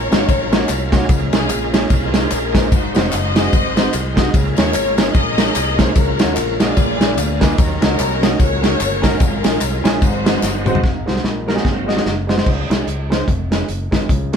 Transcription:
Already playing: F#3 A#3 C#4 F4 A#4 C#5
0.11 G#1 A#3 C#4 F4 F#4 C#5, snare, ride, tambourine
0.29 A#1, kick, ride, tambourine
0.52 A#3 C#4 F4 F#4 C#5, snare, ride, tambourine
0.68 C2 F5, clap, ride, tambourine
0.92 A#3 C#4 F4 F#4 C#5 G#5, kick, snare, ride, tambourine
1.09 C#2 C#3 G#3 A#3 C#4 F4 A#4, kick, ride, tambourine
1.33 C2 A#3 C#4 F4 G#4 C#5, snare, ride, tambourine
1.49 A#1, clap, ride, tambourine
1.73 A#3 C#4 F4 G#4 C#5, snare, ride, tambourine
1.90 C2 F4 G#4 C5, kick, ride, tambourine
2.13 A#3 C#4 F4 G#4 A#4, snare, ride, tambourine
2.31 A#1 F4 A#4, clap, ride, tambourine
2.54 A#3 C#4 F4 G#4 C5, kick, snare, ride, tambourine
2.71 G#1 G#2 G#3 C4 D#4 F#4 C5, kick, ride, tambourine
2.95 F1 G#3 C4 D#4 F#4 C5 C#5, snare, ride, tambourine
3.12 F#1 F#4 C5 D#5, clap, ride, tambourine
3.35 G#3 C4 D#4 F#4 G#4, snare, ride, tambourine
3.53 G#1, kick, ride, tambourine
3.76 G#3 C4 D#4 F#4 C5, snare, ride, tambourine
3.93 C2, clap, ride, tambourine
4.16 G#3 C4 D#4 F#4 D#5, kick, snare, ride, tambourine
4.34 C#2 C#3 G#3 A#3 C#4 F4 A#4, kick, ride, tambourine
4.57 D#2 A#3 C#4 F4 G#4 A#4 C#5, snare, ride, tambourine
4.74 G#1, clap, ride, tambourine
4.97 A#3 C#4 F4 G#4 C#5, snare, ride, tambourine
5.14 A#1 G#4 A#4 D#5, kick, ride, tambourine
5.38 A#3 C#4 F4 G#4 C#5, snare, ride, tambourine
5.55 C2, clap, ride, tambourine
5.79 A#3 C#4 F4 G#4 C5 C#5, kick, snare, ride, tambourine
5.95 C#2 C#3 F#3 A#3 C#4 F4 F#4 A#4 F5, kick, ride, tambourine
6.19 D#2 A#3 C#4 F4 F#4 C#5, snare, ride, tambourine
6.36 A#1 A#4, clap, ride, tambourine
6.59 A#3 C#4 F4 F#4 G#4 D5 D#5, snare, ride, tambourine
6.77 A#1 A#2 G#3 B3 D4 F4 G#4, kick, ride, tambourine
6.82 A#4
7.00 A#3 D4 F4 G#4 B4, snare, ride, tambourine
7.18 D2 F5, clap, ride, tambourine
7.40 A#3 D4 F4 G#4 B4, kick, snare, ride, tambourine
7.58 D#2 D#3 F#3 A#3 C#4 D#4 A#4, kick, ride, tambourine
7.81 C#2 A#3 C#4 D#4 F#4 A#4 C#5, snare, ride, tambourine
7.99 C2, clap, ride, tambourine
8.22 A#3 C#4 D#4 F#4 D#5, snare, ride, tambourine
8.40 C#2 C#3 G#3 C#4 F#4 A#4 C#5, kick, ride, tambourine
8.46 A#3
8.62 C#4 F#4 A#4, snare, ride, tambourine
8.80 G1, clap, ride, tambourine
9.02 C#4 F#4 A#4, kick, snare, ride, tambourine
9.20 G#1 G#2 G#3 C#4 F4 A#4, kick, ride, tambourine
9.43 A#1 C#4 F4 G#4, snare, ride, tambourine
9.61 C2, clap, ride, tambourine
9.84 A#1 C#4 F4 G#4, snare, ride, tambourine
10.02 G#1 G#2 D#3 F#3 G#3 C4 D#4 F4 F#4 C5, kick, ride, tambourine
10.07 F#4
10.24 G#3 C4 D#4 F#4 C5, snare, ride, tambourine
10.43 G1, snare, clap, tambourine
10.66 G#3 C4 D#4 F#4 C5, mid tom, tambourine
10.75 floor tom
10.83 G#1 G#2, kick, snare
11.06 C2 G#3 D#4 F#4 C5, snare
11.16 snare
11.24 A#1, snare
11.47 F#3 G#3 A#3 C4 D#4 F#4 A#4, snare
11.54 G#3 D#4 F#4 G#4, snare
11.65 G#1, kick, snare
11.86 G#3 D#4 F#4 D#5, snare
11.95 G#3 D#4 F#4 D#5, snare
12.06 F#1, snare
12.27 G#3 D#4 F#4 C5, snare
12.37 G#3 D#4 F#4 C5, snare
12.46 C#2 C#3, kick, crash
12.70 C2 G#3 C#4 F4 C#5, snare, closed hi-hat
12.87 C#2, closed hi-hat
13.10 G#3 C#4 F4 C5, snare, closed hi-hat
13.28 F1, kick, closed hi-hat
13.51 G#3 C#4 F4 B4, snare, closed hi-hat
13.69 F#1, closed hi-hat
13.91 G#1 G#3 C#4 F4 B4, kick, snare, closed hi-hat
14.09 C#2 C#3, kick, closed hi-hat
14.32 A#3 C#4, closed hi-hat

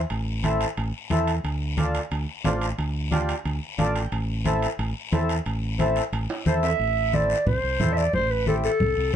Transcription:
0.10 A1, high conga, high timbale, long guiro
0.43 C4 E4 A4, high conga, high timbale, short guiro
0.61 high timbale, short guiro
0.77 A1, high conga, high timbale, long guiro
1.10 E2 C4 E4 A4, high conga, high timbale, short guiro
1.27 high timbale, short guiro
1.44 D2, high conga, high timbale, long guiro
1.77 D4 F4 A4, high conga, high timbale, short guiro
1.94 high timbale, short guiro
2.11 D2, high conga, high timbale, long guiro
2.44 A1 D4 F4 C5, high conga, high timbale, low timbale, short guiro
2.61 high timbale, short guiro
2.78 D2, high conga, high timbale, long guiro
3.12 D4 F4 G4, high conga, high timbale, short guiro
3.29 high timbale, short guiro
3.45 D2, high conga, high timbale, long guiro
3.78 A1 D4 F4 A4 D5, high conga, high timbale, short guiro
3.95 G5, high timbale, short guiro
4.12 A1, high conga, high timbale, long guiro
4.45 C4 E4 A4, high conga, high timbale, short guiro
4.62 high timbale, short guiro
4.79 A1, high conga, high timbale, long guiro
5.12 E2 C4 E4 A4, high conga, high timbale, low timbale, short guiro
5.29 high timbale, short guiro
5.46 A1, high conga, high timbale, long guiro
5.79 C4 E4 A4, high conga, high timbale, short guiro
5.96 high timbale, short guiro
6.12 A1, high conga, high timbale, long guiro
6.30 high timbale
6.46 E2 C4 E4 A4 C5, high conga, short guiro
6.63 E5, low timbale, short guiro
6.79 A1, high conga, long guiro
7.13 C4 E4 A4 D5, high conga, short guiro
7.30 short guiro
7.46 C2 C5, high conga, low conga, long guiro
7.63 C2
7.80 E2 C4 E4 A4, high conga, low conga, short guiro
7.93 E5
7.97 D5, short guiro
8.13 A1 C5, high conga, low conga, long guiro
8.31 B4
8.47 C4 E4 G4 A4, high conga, short guiro
8.64 A4, short guiro
8.80 C2, high conga, low conga, long guiro
8.97 C2

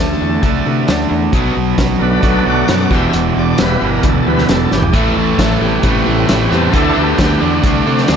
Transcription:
Already playing: D2 D3 A3 D4 A4
0.00 D3 A3
0.21 E2 D3 A3
0.42 C2 D3 A3 D4 G#4 A4, kick, closed hi-hat
0.64 C3 D3 E3 A3
0.88 D2 D3 A3, snare, closed hi-hat
1.09 E2 D3 A3
1.33 B1 B2 F#3 B3, kick, closed hi-hat
1.56 B1 B2 F#3
1.78 B1 B2 F#3, kick, snare, closed hi-hat
1.99 B1 B2 D3 F#3 A3 D4 A#4
2.04 B4
2.23 B1 B2 F#3 B3 D4 B4, kick, closed hi-hat
2.46 B1 B2 F#3 F#4 D5
2.68 F#2 B2 F#3 F#4 D5, snare, closed hi-hat
2.91 E1 E2 B2 E3 G4 E5, kick, snare
3.13 E1 E2 B2, closed hi-hat
3.36 E1 E2 B2 D5
3.58 E1 E2 B2 E3 G3 B3 B4, snare, closed hi-hat
3.81 G1 E2 B2 E3
3.85 A#4
4.03 D2 E2 B2 A4, kick, closed hi-hat
4.26 D2 E2 B2 E3 G3 B3 B4
4.38 snare
4.48 E1 E2 B2 A4, snare, closed hi-hat
4.71 G1 E2 B2 G4, snare
4.82 floor tom
4.93 A1 A2 E3 A3, kick, closed hi-hat
4.97 E4
5.16 A1 A2 E3 A3 A4
5.39 A1 A2 E3 A3, kick, snare, closed hi-hat
5.61 A1 A2 C3 E3 G3 A3 B3
5.83 A1 A2 E3 A3, kick, closed hi-hat
6.06 A1 A2 E3 A3
6.28 A1 A2 E3 A3, snare, closed hi-hat
6.49 E2 A2 E3 A3 G#4, snare
6.53 C4 A4
6.73 D2 D3 E3 A3 D4 E4 A4, kick, closed hi-hat
6.96 D2 D3 A3 B3 D4 G4
7.19 D2 D3 A3 B3 D4 G4, kick, snare, closed hi-hat
7.41 E2 D3 A3 D4
7.64 C2 D3 A3 D4, kick, closed hi-hat
7.87 C3 D3 A3 D4
7.98 snare
8.08 D2 D3 A3 D4, snare, closed hi-hat

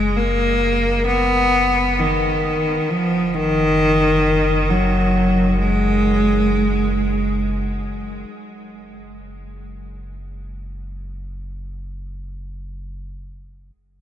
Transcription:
Already playing: F#1 G#3
0.16 A#3
1.06 B3
1.99 D#3
2.84 F#1
2.90 F3
3.35 D#3
4.70 F#3
5.59 G#3
8.29 F#1
13.75 F#1

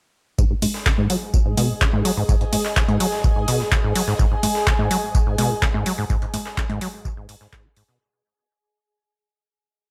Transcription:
0.38 G#2 G#4, kick, tambourine
0.49 G#2 D#5
0.62 G#2, open hi-hat, tambourine, low conga
0.74 snare
0.86 C#3, kick, snare, clap, tambourine
0.98 G#2, low conga
1.03 G#5
1.10 F#3, open hi-hat, tambourine
1.34 B2, kick, tambourine
1.46 G#2
1.57 B2, open hi-hat, tambourine, low conga
1.70 G#2
1.81 C#3, kick, snare, clap, tambourine
1.93 G#2, low conga
2.05 F#3, open hi-hat, tambourine
2.17 G#2
2.29 G#2, kick, tambourine
2.41 G#2, closed hi-hat
2.53 G#2, open hi-hat, tambourine, low conga
2.65 snare, clap
2.76 C#3, kick, snare, clap, tambourine
2.88 G#2, closed hi-hat, low conga
3.00 F#3, open hi-hat, tambourine
3.12 snare
3.24 B2, kick, tambourine
3.36 G#2
3.48 B2, open hi-hat, tambourine
3.60 G#2, snare
3.72 C#3, kick, snare, clap, tambourine
3.84 G#2
3.95 F#3, open hi-hat
4.07 G#2, snare
4.19 G#2, kick, tambourine
4.31 G#2
4.43 G#2, open hi-hat, tambourine, low conga
4.55 snare
4.67 C#3, kick, snare, clap, tambourine
4.79 G#2, low conga
4.91 F#3, open hi-hat, tambourine
5.15 B2, kick, tambourine
5.26 G#2
5.38 B2, open hi-hat, tambourine, low conga
5.50 G#2
5.62 C#3, kick, snare, clap, tambourine
5.74 G#2, low conga
5.86 F#3, open hi-hat, tambourine
5.98 G#2
6.10 G#2, kick, tambourine
6.22 G#2, closed hi-hat
6.34 G#2, open hi-hat, tambourine, low conga
6.46 snare, clap
6.57 C#3, kick, snare, clap, tambourine
6.69 G#2, closed hi-hat, low conga
6.81 F#3, open hi-hat
7.05 B2, kick, tambourine
7.17 G#2
7.29 G#2, open hi-hat, tambourine
7.41 G#2, snare
7.53 G#2, kick, snare, clap, tambourine
7.65 G#3
7.76 G#2, open hi-hat
7.88 B2, snare

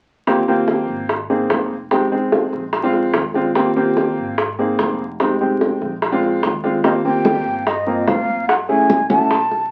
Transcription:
0.27 D#2 A#3 C4 F4 G4, high bongo
0.48 A#3 C4 F4 G4
0.68 high bongo
0.88 G#1
1.09 high bongo
1.30 A#3 C4 D#4 G#4
1.50 F1, high bongo, low bongo
1.91 G#3 C4 D#4 G4, high bongo
2.12 G#3 C4 D#4 G#4
2.32 high bongo
2.53 A#1, high bongo
2.73 high bongo
2.83 G#3 C4 D4 F4
2.93 high bongo
3.14 D#2, high bongo, low bongo
3.34 G#3 C4 D4 F4, high bongo
3.55 A#3 C4 F4 G4, high bongo
3.76 A#3 C4 F4 G4
3.97 high bongo
4.17 G#1
4.38 high bongo
4.59 A#3 C4 D#4 G#4
4.79 F1, high bongo, low bongo
5.20 G#3 C4 D#4 G4, high bongo
5.40 G#3 C4 D#4 G4
5.61 high bongo
5.81 A#1, high bongo
6.02 high bongo
6.12 G#3 C4 D4 F4
6.23 high bongo
6.42 D#2, high bongo, low bongo
6.64 G#3 C4 D4 F4, high bongo
6.84 A#3 C4 F4 G4 D#5, high bongo, high conga
7.05 A#3 C4 F4 G4 G5, high conga
7.25 high bongo, high conga
7.46 G2, high conga
7.66 D#5, high bongo, high conga
7.87 A#3 C4 F4 A#4, high conga
8.07 F#2 F5, high bongo, low bongo, high conga
8.28 high conga
8.48 F#5, high bongo, high conga
8.69 A3 C#4 E4 G#4 G#5, high conga
8.90 high bongo, high conga
9.09 B1 A3 C#4 E4 F#4 A5, high bongo, high conga
9.31 high bongo, high conga
9.51 high bongo, high conga

